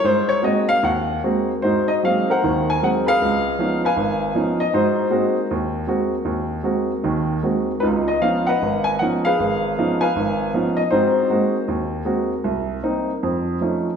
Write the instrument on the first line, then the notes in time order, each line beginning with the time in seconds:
grand piano
0.04 G#2 C5
0.29 C#5
0.42 G#3 A#3 C4 F#4 D#5
0.69 F5
0.83 D#2 F#5
1.24 G#3 A#3 C4 F#4
1.62 G#2 D#4 F#4 C5
1.88 D#5
2.03 F#3 G#3 A#3 C4 F5
2.30 A#4 C5 F#5
2.44 D#2 D#3
2.70 G#5
2.82 F#3 G#3 A#3 C4 F#5
3.06 G#4 B4 F5
3.22 C#2
3.58 F3 B3 C#4 D#4
3.85 B4 F5 G#5
3.97 G#1
4.35 F3 B3 C#4 D#4
4.60 D#5
4.73 G#2 D#4 F#4 C5
5.10 G#3 A#3 C4 F#4
5.51 D#2
5.87 G#3 A#3 C4 F#4
6.25 D#2
6.63 G#3 A#3 C4 F#4
7.04 D#2 D#3
7.43 G#3 A#3 C4 F#4
7.80 C#2 D#4 F4 B4
8.08 D#5
8.22 F3 B3 C#4 D#4 F5
8.47 B4 D#5 F#5
8.62 G#1
8.84 G#5
8.99 F3 B3 C#4 D#4 F#5
9.25 G#4 B4 F5
9.40 G#1
9.78 F3 B3 C#4 D#4
10.01 B4 F5 G#5
10.16 G#1
10.54 F3 B3 C#4 D#4
10.77 D#5
10.91 G#2 C4 D#4 F#4 C5
11.29 G#3 A#3 C4 F#4
11.68 D#2
12.05 G#3 A#3 C4 F#4
12.44 C2
12.83 A#3 C4 D#4
13.23 F2
13.61 F3 A3 C#4 D#4